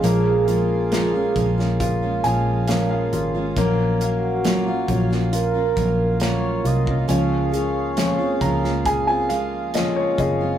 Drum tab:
HH |x-x-x-x-x-x-x-x-|x-x-x-x-x-x-x-x-|x-x-x-x-x-x-x-x-|
SD |----o--o----o---|----o--o----o---|----o--o----o---|
BD |------o-o-------|o-----o---o----o|------o-o-----o-|